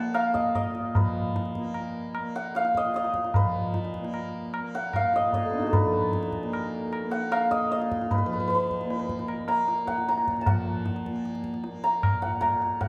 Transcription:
0.00 0.53 A#2 soft
0.00 0.95 F3 medium
0.00 1.57 A#3 medium
0.00 0.96 B4 medium
0.00 0.34 D#5 medium
0.00 0.20 F#5 medium
0.00 1.83 A5 medium
0.14 2.42 F5 medium
0.14 tabla na medium
0.34 0.55 D#5 medium
0.34 tabla ke medium
0.54 2.79 A#2 soft
0.54 2.77 D#5 medium
0.54 tabla na medium
0.54 tabla ge medium
0.75 tabla te medium
0.95 3.40 F3 medium
0.95 3.35 B4 medium
0.95 tabla tin loud
0.95 tabla ge medium
1.36 tabla te medium
1.45 tabla te soft
1.55 2.19 A#3 medium
1.55 tabla ke medium
1.65 tabla te soft
1.74 tabla na medium
2.15 tabla na medium
2.19 4.01 A#3 medium
2.36 2.62 F#5 medium
2.55 4.81 F5 medium
2.55 tabla te medium
2.65 tabla te medium
2.75 2.95 D#5 medium
2.75 tabla ke medium
2.79 5.21 A#2 medium
2.84 tabla te soft
2.94 5.15 D#5 medium
2.94 tabla te medium
3.04 tabla te medium
3.14 tabla ke medium
3.24 tabla te medium
3.34 5.52 B4 medium
3.34 tabla tin loud
3.34 tabla ge medium
3.41 5.82 F3 medium
3.74 tabla te medium
3.85 tabla te medium
3.94 tabla ke medium
4.01 4.61 A#3 medium
4.01 tabla te medium
4.14 tabla na medium
4.54 tabla na medium
4.61 6.43 A#3 medium
4.75 5.02 F#5 medium
4.93 5.68 F5 medium
4.93 tabla na medium
4.93 tabla ge medium
5.13 5.34 D#5 medium
5.13 tabla te medium
5.22 7.64 A#2 medium
5.33 7.51 D#5 medium
5.33 tabla tin medium
5.33 tabla ge medium
5.43 5.64 A3 soft
5.43 5.73 A#3 soft
5.50 5.76 B3 soft
5.50 7.57 D4 soft
5.58 9.18 D#4 soft
5.58 7.17 F4 soft
5.62 7.38 F#4 soft
5.67 8.61 A4 soft
5.67 8.17 A#4 soft
5.73 8.11 B4 medium
5.73 tabla tin loud
5.73 tabla ge medium
5.83 8.25 F3 medium
6.13 tabla te medium
6.23 tabla te medium
6.33 tabla ke medium
6.43 7.04 A#3 medium
6.43 tabla te soft
6.53 tabla na medium
6.93 tabla na medium
7.04 8.85 A#3 medium
7.11 7.38 F#5 medium
7.32 9.53 F5 medium
7.32 tabla na medium
7.51 7.71 D#5 medium
7.51 tabla ke medium
7.65 10.05 A#2 medium
7.71 10.10 D#5 medium
7.71 tabla te medium
7.82 tabla te medium
7.92 tabla ke medium
8.02 tabla te medium
8.11 8.18 B4 medium
8.11 tabla tin loud
8.11 tabla ge loud
8.18 8.26 B4 soft
8.25 10.47 F3 medium
8.25 8.33 B4 medium
8.33 8.40 B4 soft
8.40 8.47 B4 soft
8.48 8.54 B4 medium
8.48 tabla te medium
8.55 9.54 B4 medium
8.60 tabla te medium
8.71 tabla ke soft
8.81 tabla te medium
8.85 9.44 A#3 medium
8.90 tabla te medium
9.00 tabla te medium
9.09 tabla ke medium
9.19 tabla te medium
9.28 tabla na medium
9.44 11.07 A#3 medium
9.44 10.08 A#5 medium
9.44 tabla na medium
9.68 tabla te medium
9.78 tabla te medium
9.87 10.46 F#5 medium
9.87 tabla ke medium
9.98 tabla te medium
10.05 12.25 A#2 medium
10.05 10.47 A#5 medium
10.05 tabla te medium
10.18 tabla te medium
10.28 tabla ke medium
10.37 tabla te medium
10.41 11.90 A5 medium
10.46 12.85 F3 medium
10.46 12.22 F#5 medium
10.46 tabla tin loud
10.46 tabla ge medium
10.86 tabla te medium
10.96 tabla te medium
11.06 11.66 A#3 medium
11.06 tabla ke medium
11.16 tabla te soft
11.25 tabla te medium
11.35 tabla te medium
11.44 tabla ke medium
11.54 tabla te medium
11.64 12.88 A#3 medium
11.64 tabla te medium
11.84 12.40 A#5 medium
11.84 tabla te medium
12.03 tabla na medium
12.03 tabla ge medium
12.22 12.88 A#2 medium
12.22 12.80 F#5 medium
12.22 tabla te soft
12.41 12.88 A#5 medium
12.41 tabla na medium
12.41 tabla ge medium
12.62 tabla te medium
12.81 12.88 F#5 medium
12.81 tabla tin loud
12.81 tabla ge medium

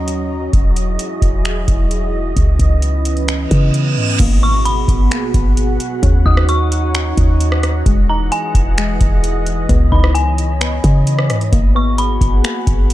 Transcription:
0.00 0.49 D#2 loud
0.00 0.52 F#3 medium
0.00 0.52 C#4 medium
0.00 2.33 F#4 medium
0.00 0.52 D#5 medium
0.00 4.16 D#5 medium
0.00 0.50 A#5 medium
0.08 closed hi-hat medium
0.53 0.97 E1 loud
0.53 2.35 F#3 medium
0.53 2.35 G#3 medium
0.53 2.35 E4 medium
0.53 2.35 G#4 medium
0.53 4.16 D#5 medium
0.53 kick loud
0.53 closed hi-hat medium
0.76 closed hi-hat medium
0.99 closed hi-hat medium
1.22 1.66 E1 loud
1.22 kick medium
1.22 closed hi-hat medium
1.45 finger snap loud
1.45 closed hi-hat medium
1.68 2.34 E1 loud
1.68 kick loud
1.68 closed hi-hat medium
1.91 closed hi-hat medium
2.37 2.59 C#2 loud
2.37 4.18 E3 medium
2.37 4.18 B3 medium
2.37 4.18 C#4 medium
2.37 4.18 E4 medium
2.37 4.18 B4 medium
2.37 kick loud
2.37 closed hi-hat medium
2.59 3.47 C#2 loud
2.59 kick medium
2.59 closed hi-hat medium
2.82 closed hi-hat medium
3.05 closed hi-hat medium
3.17 closed hi-hat soft
3.28 finger snap loud
3.28 closed hi-hat medium
3.28 reverse cymbal medium
3.51 3.98 C#3 loud
3.51 kick loud
3.51 closed hi-hat medium
3.74 closed hi-hat medium
3.97 4.19 G#2 loud
4.20 4.86 G#1 loud
4.20 6.01 B2 medium
4.20 5.10 A#3 medium
4.20 6.01 B3 medium
4.20 7.83 F#4 medium
4.20 6.01 G#4 medium
4.20 7.83 F#5 medium
4.20 6.01 B5 medium
4.20 kick loud
4.20 closed hi-hat medium
4.20 crash loud
4.20 impact medium
4.42 5.80 B3 medium
4.42 4.65 C#6 medium
4.65 5.53 B5 medium
4.65 closed hi-hat medium
4.88 5.10 G#1 loud
4.88 kick medium
4.88 closed hi-hat medium
5.11 6.03 A#3 medium
5.11 finger snap loud
5.11 closed hi-hat medium
5.34 5.78 G#1 loud
5.34 kick loud
5.34 closed hi-hat medium
5.57 closed hi-hat medium
5.80 closed hi-hat medium
6.03 6.25 D#2 loud
6.03 6.94 C#4 medium
6.03 7.84 C#4 medium
6.03 7.84 D#4 medium
6.03 7.84 C#5 medium
6.03 11.49 D#5 loud
6.03 kick loud
6.03 closed hi-hat medium
6.26 7.14 D#2 loud
6.26 7.63 D#4 medium
6.26 6.48 D#6 medium
6.26 kick medium
6.37 cross-stick loud
6.49 7.82 C#6 medium
6.49 closed hi-hat medium
6.72 closed hi-hat medium
6.95 7.86 C#4 medium
6.95 finger snap loud
6.95 closed hi-hat medium
7.17 7.83 D#2 loud
7.17 kick loud
7.17 closed hi-hat medium
7.40 closed hi-hat medium
7.52 cross-stick loud
7.63 cross-stick medium
7.63 closed hi-hat medium
7.86 8.30 E1 loud
7.86 11.49 E3 medium
7.86 8.77 G#3 medium
7.86 9.68 G#3 medium
7.86 9.68 F#4 medium
7.86 9.68 G#4 medium
7.86 11.49 D#5 medium
7.86 9.68 F#5 medium
7.86 kick loud
7.86 closed hi-hat medium
8.10 9.47 D#4 medium
8.10 8.31 A#5 medium
8.32 9.20 G#5 loud
8.32 closed hi-hat medium
8.55 8.99 E1 loud
8.55 kick medium
8.55 closed hi-hat medium
8.78 9.69 G#3 medium
8.78 finger snap loud
8.78 closed hi-hat medium
9.01 9.67 E1 loud
9.01 kick loud
9.01 closed hi-hat medium
9.24 closed hi-hat medium
9.46 closed hi-hat medium
9.69 9.91 C#2 loud
9.69 10.60 B3 loud
9.69 11.51 B3 medium
9.69 11.51 E4 medium
9.69 11.51 C#5 medium
9.69 11.51 B5 medium
9.69 kick loud
9.69 closed hi-hat medium
9.92 10.80 C#2 loud
9.92 11.30 D#4 medium
9.92 10.14 B5 medium
9.92 kick medium
10.04 cross-stick loud
10.15 11.48 G#5 medium
10.15 closed hi-hat medium
10.38 closed hi-hat medium
10.61 11.53 B3 medium
10.61 finger snap loud
10.61 closed hi-hat medium
10.84 11.31 C#3 loud
10.84 kick loud
10.84 closed hi-hat medium
11.07 closed hi-hat medium
11.19 cross-stick loud
11.30 11.51 G#2 loud
11.30 cross-stick medium
11.30 closed hi-hat medium
11.41 closed hi-hat soft
11.52 12.19 G#1 loud
11.52 12.43 A#3 medium
11.52 12.94 B3 medium
11.52 12.94 F#4 medium
11.52 12.94 G#4 medium
11.52 12.94 F#5 medium
11.52 12.94 G#5 medium
11.52 12.94 B5 loud
11.52 kick loud
11.52 closed hi-hat medium
11.75 12.94 B3 medium
11.75 11.98 C#6 medium
11.98 12.86 B5 medium
11.98 closed hi-hat medium
12.21 12.43 G#1 loud
12.21 kick medium
12.21 closed hi-hat medium
12.44 12.94 A#3 medium
12.44 finger snap loud
12.44 closed hi-hat medium
12.67 12.94 G#1 loud
12.67 kick loud
12.67 closed hi-hat medium
12.90 closed hi-hat medium

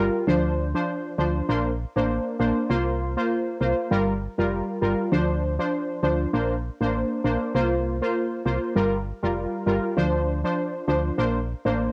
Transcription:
0.00 0.10 G1 medium
0.00 0.25 G3 medium
0.00 0.25 F4 medium
0.00 0.26 A#4 medium
0.27 0.74 D2 loud
0.27 0.71 F3 medium
0.27 0.71 D4 medium
0.27 0.71 C5 loud
0.75 1.15 F3 medium
0.75 1.15 D4 medium
0.75 1.15 C5 medium
1.18 1.42 D2 loud
1.18 1.46 F3 medium
1.18 1.46 D4 medium
1.18 1.47 C5 medium
1.49 1.85 A#1 loud
1.49 1.70 A#3 medium
1.49 1.70 D4 medium
1.49 1.70 C5 loud
1.96 2.19 A1 medium
1.96 2.36 A#3 medium
1.96 2.36 D4 medium
1.96 2.37 C5 medium
2.39 2.53 A#1 medium
2.39 2.68 A#3 medium
2.39 2.68 D4 medium
2.39 2.68 C5 medium
2.69 3.17 C2 loud
2.69 3.13 A#3 loud
2.69 3.13 F4 medium
2.69 3.13 C5 loud
3.17 3.57 A#3 medium
3.17 3.57 F4 medium
3.17 3.58 C5 medium
3.60 3.74 C2 medium
3.60 3.89 A#3 medium
3.60 3.89 F4 medium
3.60 3.89 C5 medium
3.91 4.27 G1 loud
3.91 4.12 G3 loud
3.91 4.13 F4 medium
3.91 4.13 A#4 loud
4.38 4.62 F1 medium
4.38 4.79 G3 medium
4.38 4.79 F4 medium
4.38 4.79 A#4 medium
4.81 4.95 G1 loud
4.81 5.10 G3 medium
4.81 5.10 F4 medium
4.81 5.10 A#4 medium
5.12 5.59 D2 loud
5.12 5.55 F3 medium
5.12 5.55 D4 medium
5.12 5.55 C5 loud
5.59 6.00 F3 medium
5.59 6.00 D4 medium
5.59 6.00 C5 medium
6.03 6.26 D2 loud
6.03 6.31 F3 medium
6.03 6.31 D4 medium
6.03 6.31 C5 medium
6.33 6.70 A#1 loud
6.33 6.55 A#3 loud
6.33 6.55 D4 medium
6.33 6.55 C5 loud
6.81 7.04 A1 medium
6.81 7.21 A#3 medium
6.81 7.21 D4 medium
6.81 7.21 C5 medium
7.24 7.37 A#1 medium
7.24 7.52 A#3 medium
7.24 7.53 D4 medium
7.24 7.53 C5 medium
7.54 8.01 C2 loud
7.54 7.98 A#3 loud
7.54 7.98 F4 medium
7.54 7.98 C5 loud
8.02 8.42 A#3 medium
8.02 8.42 F4 medium
8.02 8.43 C5 medium
8.45 8.59 C2 medium
8.45 8.74 A#3 medium
8.45 8.74 F4 medium
8.45 8.74 C5 medium
8.75 9.12 G1 loud
8.75 8.97 G3 medium
8.75 8.97 F4 medium
8.75 8.98 A#4 loud
9.23 9.46 F1 medium
9.23 9.63 G3 medium
9.23 9.64 F4 medium
9.23 9.64 A#4 medium
9.66 9.80 G1 loud
9.66 9.95 G3 medium
9.66 9.95 F4 medium
9.66 9.95 A#4 medium
9.97 10.44 D2 loud
9.97 10.40 F3 loud
9.97 10.40 D4 medium
9.97 10.40 C5 loud
10.44 10.85 F3 medium
10.44 10.85 D4 medium
10.44 10.85 C5 medium
10.87 11.11 D2 loud
10.87 11.16 F3 medium
10.87 11.16 D4 medium
10.87 11.16 C5 medium
11.18 11.55 A#1 loud
11.18 11.40 A#3 medium
11.18 11.40 D4 medium
11.18 11.40 C5 loud
11.65 11.89 A1 medium
11.65 11.92 A#3 medium
11.65 11.92 D4 medium
11.65 11.92 C5 medium

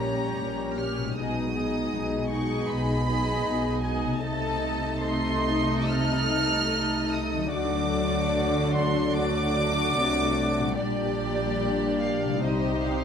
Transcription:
0.00 0.28 A#1 medium
0.00 0.28 A#2 medium
0.00 1.10 A#2 soft
0.00 1.11 G3 soft
0.00 1.12 G3 soft
0.00 0.75 C#4 soft
0.00 1.14 C#4 soft
0.00 1.15 C#4 soft
0.00 0.76 G4 soft
0.00 0.76 C#5 soft
0.00 1.17 C#5 soft
0.00 0.76 A#5 medium
0.38 1.07 A#1 soft
0.38 1.07 A#2 soft
0.78 1.15 C#4 soft
0.78 1.15 G4 soft
0.78 1.15 C#5 soft
0.78 1.16 F6 medium
0.98 4.16 B2 soft
1.02 4.18 G#3 soft
1.07 4.12 D#4 soft
1.11 4.04 G#3 medium
1.11 4.04 D#4 medium
1.11 4.23 B4 soft
1.16 1.83 B1 soft
1.16 1.83 B2 medium
1.16 1.53 B3 soft
1.16 1.54 D#4 soft
1.16 1.53 G#4 soft
1.16 1.53 D#5 soft
1.16 2.30 D#6 medium
1.54 2.29 B3 soft
1.54 2.29 D#4 soft
1.54 2.29 G#4 soft
1.54 2.28 D#5 soft
1.93 2.60 B1 medium
1.93 2.60 B2 medium
2.30 3.07 B3 soft
2.30 3.07 D#4 soft
2.30 3.05 G#4 soft
2.30 3.05 D#5 soft
2.30 2.68 C#6 medium
2.69 3.37 B1 medium
2.69 3.37 B2 medium
2.69 3.83 B5 medium
3.06 3.82 B3 soft
3.06 3.82 D#4 soft
3.06 3.81 G#4 medium
3.06 3.81 D#5 medium
3.46 4.13 B1 medium
3.46 4.13 B2 medium
3.82 4.22 B3 soft
3.82 4.22 D#4 medium
3.82 4.21 G#4 soft
3.82 4.21 D#5 soft
3.82 4.20 G#5 medium
4.04 7.46 C3 soft
4.09 7.99 A3 soft
4.13 7.51 D#4 soft
4.18 7.48 C2 medium
4.18 7.48 A3 medium
4.18 7.48 D#4 medium
4.18 7.46 A4 soft
4.18 5.02 A5 medium
4.24 7.49 C3 medium
4.24 4.99 A3 medium
4.24 5.00 D#4 medium
4.24 4.99 A4 medium
4.24 5.00 D#5 medium
5.03 7.48 A3 medium
5.03 7.48 D#4 medium
5.03 7.49 A4 medium
5.03 7.49 D#5 medium
5.03 5.91 C6 medium
5.89 7.11 F6 loud
7.13 7.52 D#6 medium
7.34 10.71 D3 medium
7.38 10.73 F#3 soft
7.43 10.67 D4 soft
7.47 10.78 A4 soft
7.47 9.11 D5 medium
7.52 9.96 D2 medium
7.52 9.96 D3 medium
7.52 10.59 F#3 medium
7.52 9.11 A3 medium
7.52 12.43 D4 medium
7.52 9.12 D4 medium
7.52 9.11 F#4 medium
7.52 8.72 D6 medium
8.76 9.15 C6 medium
9.13 10.74 A3 medium
9.13 10.74 D4 medium
9.13 10.72 F#4 medium
9.13 10.73 D5 medium
9.13 10.77 D6 loud
9.96 10.75 C2 medium
9.96 10.76 C3 medium
10.59 12.37 A#2 soft
10.63 12.28 G3 soft
10.68 12.42 D4 soft
10.72 12.42 A#1 medium
10.72 12.42 A#2 medium
10.72 13.04 G3 medium
10.72 12.44 D5 soft
10.72 11.98 D5 medium
10.77 12.41 G3 medium
10.77 12.39 D4 medium
10.77 12.42 G4 medium
10.77 12.39 D5 medium
12.02 12.43 F5 medium
12.24 13.04 C3 soft
12.29 13.04 G3 soft
12.33 13.04 D#4 soft
12.38 13.04 C5 soft
12.42 13.04 C2 medium
12.42 13.04 C3 medium
12.42 13.04 G3 soft
12.42 13.04 D#4 medium
12.42 13.04 G4 medium
12.42 13.04 C5 medium
12.42 12.85 D#5 medium
12.85 13.04 F5 medium

